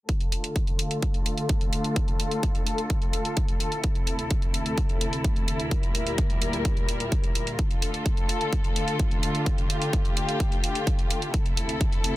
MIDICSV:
0, 0, Header, 1, 3, 480
1, 0, Start_track
1, 0, Key_signature, -1, "minor"
1, 0, Tempo, 468750
1, 90, Time_signature, 4, 2, 24, 8
1, 12457, End_track
2, 0, Start_track
2, 0, Title_t, "String section"
2, 0, Program_c, 0, 48
2, 93, Note_on_c, 0, 57, 67
2, 94, Note_on_c, 0, 50, 73
2, 94, Note_on_c, 0, 65, 65
2, 94, Note_on_c, 0, 69, 79
2, 3893, Note_off_c, 0, 57, 0
2, 3894, Note_off_c, 0, 50, 0
2, 3894, Note_off_c, 0, 65, 0
2, 3929, Note_on_c, 0, 48, 69
2, 3930, Note_on_c, 0, 38, 72
2, 3930, Note_on_c, 0, 57, 66
2, 3931, Note_on_c, 0, 64, 69
2, 5811, Note_off_c, 0, 69, 0
2, 5831, Note_off_c, 0, 48, 0
2, 5831, Note_off_c, 0, 57, 0
2, 5847, Note_on_c, 0, 46, 68
2, 5847, Note_on_c, 0, 55, 67
2, 5847, Note_on_c, 0, 70, 82
2, 7732, Note_off_c, 0, 38, 0
2, 7732, Note_off_c, 0, 64, 0
2, 7749, Note_off_c, 0, 55, 0
2, 7750, Note_off_c, 0, 46, 0
2, 7750, Note_off_c, 0, 70, 0
2, 7769, Note_on_c, 0, 50, 76
2, 7770, Note_on_c, 0, 57, 67
2, 7770, Note_on_c, 0, 65, 69
2, 7770, Note_on_c, 0, 69, 83
2, 9671, Note_off_c, 0, 69, 0
2, 9688, Note_on_c, 0, 67, 85
2, 11572, Note_off_c, 0, 50, 0
2, 11572, Note_off_c, 0, 57, 0
2, 11572, Note_off_c, 0, 65, 0
2, 11590, Note_off_c, 0, 67, 0
2, 11612, Note_on_c, 0, 48, 70
2, 11612, Note_on_c, 0, 57, 70
2, 11612, Note_on_c, 0, 69, 85
2, 11613, Note_on_c, 0, 38, 74
2, 11613, Note_on_c, 0, 64, 71
2, 12457, Note_off_c, 0, 38, 0
2, 12457, Note_off_c, 0, 48, 0
2, 12457, Note_off_c, 0, 57, 0
2, 12457, Note_off_c, 0, 64, 0
2, 12457, Note_off_c, 0, 69, 0
2, 12457, End_track
3, 0, Start_track
3, 0, Title_t, "Drums"
3, 90, Note_on_c, 9, 36, 100
3, 90, Note_on_c, 9, 42, 60
3, 192, Note_off_c, 9, 42, 0
3, 193, Note_off_c, 9, 36, 0
3, 210, Note_on_c, 9, 42, 36
3, 312, Note_off_c, 9, 42, 0
3, 329, Note_on_c, 9, 42, 85
3, 432, Note_off_c, 9, 42, 0
3, 449, Note_on_c, 9, 42, 36
3, 552, Note_off_c, 9, 42, 0
3, 570, Note_on_c, 9, 36, 104
3, 570, Note_on_c, 9, 42, 61
3, 673, Note_off_c, 9, 36, 0
3, 673, Note_off_c, 9, 42, 0
3, 690, Note_on_c, 9, 42, 36
3, 792, Note_off_c, 9, 42, 0
3, 809, Note_on_c, 9, 42, 88
3, 912, Note_off_c, 9, 42, 0
3, 930, Note_on_c, 9, 42, 36
3, 1032, Note_off_c, 9, 42, 0
3, 1049, Note_on_c, 9, 42, 60
3, 1050, Note_on_c, 9, 36, 107
3, 1152, Note_off_c, 9, 42, 0
3, 1153, Note_off_c, 9, 36, 0
3, 1170, Note_on_c, 9, 42, 37
3, 1272, Note_off_c, 9, 42, 0
3, 1288, Note_on_c, 9, 42, 82
3, 1391, Note_off_c, 9, 42, 0
3, 1408, Note_on_c, 9, 42, 35
3, 1511, Note_off_c, 9, 42, 0
3, 1528, Note_on_c, 9, 42, 60
3, 1530, Note_on_c, 9, 36, 110
3, 1631, Note_off_c, 9, 42, 0
3, 1633, Note_off_c, 9, 36, 0
3, 1649, Note_on_c, 9, 42, 36
3, 1751, Note_off_c, 9, 42, 0
3, 1768, Note_on_c, 9, 42, 84
3, 1870, Note_off_c, 9, 42, 0
3, 1889, Note_on_c, 9, 42, 35
3, 1991, Note_off_c, 9, 42, 0
3, 2009, Note_on_c, 9, 42, 60
3, 2010, Note_on_c, 9, 36, 108
3, 2111, Note_off_c, 9, 42, 0
3, 2112, Note_off_c, 9, 36, 0
3, 2129, Note_on_c, 9, 42, 35
3, 2232, Note_off_c, 9, 42, 0
3, 2249, Note_on_c, 9, 42, 85
3, 2352, Note_off_c, 9, 42, 0
3, 2370, Note_on_c, 9, 42, 35
3, 2472, Note_off_c, 9, 42, 0
3, 2490, Note_on_c, 9, 36, 107
3, 2490, Note_on_c, 9, 42, 60
3, 2592, Note_off_c, 9, 36, 0
3, 2592, Note_off_c, 9, 42, 0
3, 2610, Note_on_c, 9, 42, 35
3, 2712, Note_off_c, 9, 42, 0
3, 2729, Note_on_c, 9, 42, 85
3, 2831, Note_off_c, 9, 42, 0
3, 2849, Note_on_c, 9, 42, 34
3, 2951, Note_off_c, 9, 42, 0
3, 2969, Note_on_c, 9, 42, 59
3, 2970, Note_on_c, 9, 36, 114
3, 3071, Note_off_c, 9, 42, 0
3, 3073, Note_off_c, 9, 36, 0
3, 3089, Note_on_c, 9, 42, 34
3, 3192, Note_off_c, 9, 42, 0
3, 3208, Note_on_c, 9, 42, 78
3, 3310, Note_off_c, 9, 42, 0
3, 3329, Note_on_c, 9, 42, 35
3, 3431, Note_off_c, 9, 42, 0
3, 3448, Note_on_c, 9, 42, 62
3, 3451, Note_on_c, 9, 36, 110
3, 3550, Note_off_c, 9, 42, 0
3, 3553, Note_off_c, 9, 36, 0
3, 3568, Note_on_c, 9, 42, 34
3, 3671, Note_off_c, 9, 42, 0
3, 3688, Note_on_c, 9, 42, 85
3, 3791, Note_off_c, 9, 42, 0
3, 3808, Note_on_c, 9, 42, 34
3, 3911, Note_off_c, 9, 42, 0
3, 3928, Note_on_c, 9, 42, 57
3, 3931, Note_on_c, 9, 36, 110
3, 4030, Note_off_c, 9, 42, 0
3, 4033, Note_off_c, 9, 36, 0
3, 4049, Note_on_c, 9, 42, 34
3, 4151, Note_off_c, 9, 42, 0
3, 4168, Note_on_c, 9, 42, 81
3, 4270, Note_off_c, 9, 42, 0
3, 4288, Note_on_c, 9, 42, 33
3, 4391, Note_off_c, 9, 42, 0
3, 4408, Note_on_c, 9, 42, 57
3, 4411, Note_on_c, 9, 36, 111
3, 4511, Note_off_c, 9, 42, 0
3, 4513, Note_off_c, 9, 36, 0
3, 4529, Note_on_c, 9, 42, 34
3, 4631, Note_off_c, 9, 42, 0
3, 4649, Note_on_c, 9, 42, 83
3, 4751, Note_off_c, 9, 42, 0
3, 4770, Note_on_c, 9, 42, 33
3, 4872, Note_off_c, 9, 42, 0
3, 4890, Note_on_c, 9, 42, 58
3, 4891, Note_on_c, 9, 36, 114
3, 4993, Note_off_c, 9, 36, 0
3, 4993, Note_off_c, 9, 42, 0
3, 5010, Note_on_c, 9, 42, 33
3, 5113, Note_off_c, 9, 42, 0
3, 5131, Note_on_c, 9, 42, 81
3, 5233, Note_off_c, 9, 42, 0
3, 5252, Note_on_c, 9, 42, 34
3, 5354, Note_off_c, 9, 42, 0
3, 5371, Note_on_c, 9, 36, 114
3, 5372, Note_on_c, 9, 42, 59
3, 5473, Note_off_c, 9, 36, 0
3, 5474, Note_off_c, 9, 42, 0
3, 5491, Note_on_c, 9, 42, 34
3, 5593, Note_off_c, 9, 42, 0
3, 5610, Note_on_c, 9, 42, 81
3, 5713, Note_off_c, 9, 42, 0
3, 5730, Note_on_c, 9, 42, 33
3, 5832, Note_off_c, 9, 42, 0
3, 5850, Note_on_c, 9, 42, 56
3, 5851, Note_on_c, 9, 36, 108
3, 5953, Note_off_c, 9, 36, 0
3, 5953, Note_off_c, 9, 42, 0
3, 5971, Note_on_c, 9, 42, 34
3, 6073, Note_off_c, 9, 42, 0
3, 6090, Note_on_c, 9, 42, 81
3, 6193, Note_off_c, 9, 42, 0
3, 6211, Note_on_c, 9, 42, 34
3, 6313, Note_off_c, 9, 42, 0
3, 6329, Note_on_c, 9, 42, 57
3, 6330, Note_on_c, 9, 36, 106
3, 6432, Note_off_c, 9, 42, 0
3, 6433, Note_off_c, 9, 36, 0
3, 6450, Note_on_c, 9, 42, 34
3, 6552, Note_off_c, 9, 42, 0
3, 6569, Note_on_c, 9, 42, 80
3, 6672, Note_off_c, 9, 42, 0
3, 6689, Note_on_c, 9, 42, 33
3, 6792, Note_off_c, 9, 42, 0
3, 6809, Note_on_c, 9, 42, 57
3, 6810, Note_on_c, 9, 36, 109
3, 6912, Note_off_c, 9, 42, 0
3, 6913, Note_off_c, 9, 36, 0
3, 6930, Note_on_c, 9, 42, 32
3, 7033, Note_off_c, 9, 42, 0
3, 7050, Note_on_c, 9, 42, 76
3, 7153, Note_off_c, 9, 42, 0
3, 7170, Note_on_c, 9, 42, 33
3, 7273, Note_off_c, 9, 42, 0
3, 7290, Note_on_c, 9, 36, 113
3, 7290, Note_on_c, 9, 42, 55
3, 7393, Note_off_c, 9, 36, 0
3, 7393, Note_off_c, 9, 42, 0
3, 7410, Note_on_c, 9, 42, 34
3, 7512, Note_off_c, 9, 42, 0
3, 7529, Note_on_c, 9, 42, 78
3, 7631, Note_off_c, 9, 42, 0
3, 7649, Note_on_c, 9, 42, 31
3, 7752, Note_off_c, 9, 42, 0
3, 7770, Note_on_c, 9, 36, 107
3, 7770, Note_on_c, 9, 42, 57
3, 7872, Note_off_c, 9, 42, 0
3, 7873, Note_off_c, 9, 36, 0
3, 7890, Note_on_c, 9, 42, 34
3, 7993, Note_off_c, 9, 42, 0
3, 8010, Note_on_c, 9, 42, 84
3, 8112, Note_off_c, 9, 42, 0
3, 8130, Note_on_c, 9, 42, 33
3, 8233, Note_off_c, 9, 42, 0
3, 8250, Note_on_c, 9, 36, 108
3, 8250, Note_on_c, 9, 42, 57
3, 8353, Note_off_c, 9, 36, 0
3, 8353, Note_off_c, 9, 42, 0
3, 8369, Note_on_c, 9, 42, 35
3, 8472, Note_off_c, 9, 42, 0
3, 8490, Note_on_c, 9, 42, 82
3, 8592, Note_off_c, 9, 42, 0
3, 8611, Note_on_c, 9, 42, 33
3, 8713, Note_off_c, 9, 42, 0
3, 8731, Note_on_c, 9, 36, 110
3, 8731, Note_on_c, 9, 42, 56
3, 8833, Note_off_c, 9, 36, 0
3, 8833, Note_off_c, 9, 42, 0
3, 8850, Note_on_c, 9, 42, 34
3, 8953, Note_off_c, 9, 42, 0
3, 8971, Note_on_c, 9, 42, 78
3, 9073, Note_off_c, 9, 42, 0
3, 9090, Note_on_c, 9, 42, 34
3, 9193, Note_off_c, 9, 42, 0
3, 9211, Note_on_c, 9, 36, 113
3, 9211, Note_on_c, 9, 42, 58
3, 9313, Note_off_c, 9, 36, 0
3, 9313, Note_off_c, 9, 42, 0
3, 9332, Note_on_c, 9, 42, 35
3, 9434, Note_off_c, 9, 42, 0
3, 9451, Note_on_c, 9, 42, 81
3, 9554, Note_off_c, 9, 42, 0
3, 9572, Note_on_c, 9, 42, 33
3, 9674, Note_off_c, 9, 42, 0
3, 9691, Note_on_c, 9, 36, 106
3, 9691, Note_on_c, 9, 42, 59
3, 9793, Note_off_c, 9, 42, 0
3, 9794, Note_off_c, 9, 36, 0
3, 9812, Note_on_c, 9, 42, 34
3, 9914, Note_off_c, 9, 42, 0
3, 9932, Note_on_c, 9, 42, 85
3, 10034, Note_off_c, 9, 42, 0
3, 10052, Note_on_c, 9, 42, 35
3, 10154, Note_off_c, 9, 42, 0
3, 10171, Note_on_c, 9, 36, 103
3, 10172, Note_on_c, 9, 42, 59
3, 10273, Note_off_c, 9, 36, 0
3, 10275, Note_off_c, 9, 42, 0
3, 10292, Note_on_c, 9, 42, 36
3, 10394, Note_off_c, 9, 42, 0
3, 10412, Note_on_c, 9, 42, 82
3, 10514, Note_off_c, 9, 42, 0
3, 10533, Note_on_c, 9, 42, 36
3, 10635, Note_off_c, 9, 42, 0
3, 10651, Note_on_c, 9, 36, 105
3, 10652, Note_on_c, 9, 42, 59
3, 10753, Note_off_c, 9, 36, 0
3, 10754, Note_off_c, 9, 42, 0
3, 10772, Note_on_c, 9, 42, 35
3, 10874, Note_off_c, 9, 42, 0
3, 10892, Note_on_c, 9, 42, 81
3, 10994, Note_off_c, 9, 42, 0
3, 11012, Note_on_c, 9, 42, 34
3, 11114, Note_off_c, 9, 42, 0
3, 11131, Note_on_c, 9, 36, 106
3, 11131, Note_on_c, 9, 42, 60
3, 11233, Note_off_c, 9, 36, 0
3, 11234, Note_off_c, 9, 42, 0
3, 11251, Note_on_c, 9, 42, 35
3, 11353, Note_off_c, 9, 42, 0
3, 11371, Note_on_c, 9, 42, 85
3, 11474, Note_off_c, 9, 42, 0
3, 11491, Note_on_c, 9, 42, 35
3, 11593, Note_off_c, 9, 42, 0
3, 11611, Note_on_c, 9, 36, 101
3, 11611, Note_on_c, 9, 42, 63
3, 11713, Note_off_c, 9, 36, 0
3, 11713, Note_off_c, 9, 42, 0
3, 11731, Note_on_c, 9, 42, 36
3, 11833, Note_off_c, 9, 42, 0
3, 11851, Note_on_c, 9, 42, 90
3, 11953, Note_off_c, 9, 42, 0
3, 11970, Note_on_c, 9, 42, 36
3, 12073, Note_off_c, 9, 42, 0
3, 12091, Note_on_c, 9, 36, 104
3, 12091, Note_on_c, 9, 42, 64
3, 12193, Note_off_c, 9, 36, 0
3, 12193, Note_off_c, 9, 42, 0
3, 12211, Note_on_c, 9, 42, 38
3, 12313, Note_off_c, 9, 42, 0
3, 12331, Note_on_c, 9, 42, 87
3, 12433, Note_off_c, 9, 42, 0
3, 12457, End_track
0, 0, End_of_file